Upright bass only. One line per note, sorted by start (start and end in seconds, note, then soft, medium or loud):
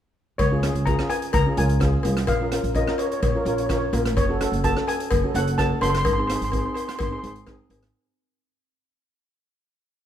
0.39 0.70 C#2 medium
0.75 0.95 C#2 medium
1.34 1.44 C#2 medium
1.57 1.99 C#2 medium
2.05 2.28 C2 medium
2.28 2.59 A#1 medium
2.64 2.84 A#1 medium
3.22 3.33 A#1 medium
3.45 3.87 A#1 medium
3.93 4.17 A#1 medium
4.17 4.48 F#1 medium
4.52 4.73 F#1 medium
5.11 5.22 F#1 medium
5.34 5.76 F#1 medium
5.81 6.06 F#1 medium
6.06 6.37 G#1 medium
6.41 6.62 G#1 medium
7.00 7.10 G#1 medium
7.23 7.65 G#1 medium
7.70 7.90 G#1 medium